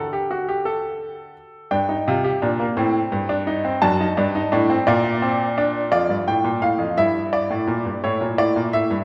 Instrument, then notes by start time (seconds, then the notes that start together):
grand piano
Already playing: D3 A4 F#5
0.13 G4
0.31 F#4
0.49 G4
0.65 A4
1.71 G2 D4 G5
1.89 D#4
2.07 C3 F4
2.24 G4
2.42 A#2 D4
2.59 A#3
2.77 A2 C4
3.12 G2
3.29 D4
3.47 D#4
3.65 C4
3.82 F#2 D4 A5
4.01 D#4
4.17 G2 D4
4.35 D#4
4.52 A2 D4
4.70 C4
4.87 A#2 A#3 D5
5.22 C4
5.58 D4
5.92 F2 F4 D5
6.10 G2
6.27 A2 G5
6.44 A#2
6.62 A2 F5
6.79 F2
6.97 G2 E4 E5
7.33 D5
7.50 A2
7.67 A#2
7.85 G2
8.04 A2 E4 C#5
8.21 A#2
8.38 A2 D5
8.56 A#2
8.73 A2 E5
8.91 G2